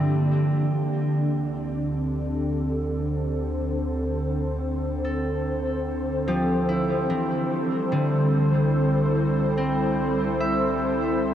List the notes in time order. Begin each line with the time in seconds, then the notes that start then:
Already playing: G2 D3 A#3 C4 D4 G4 D5
0.92 D2
1.43 C4
2.01 A4
3.02 C5
5.05 A4
6.28 F3 G4
6.69 E4
7.10 E3
7.51 C2 G3
7.92 D3
8.03 E4
9.57 C4
10.40 E5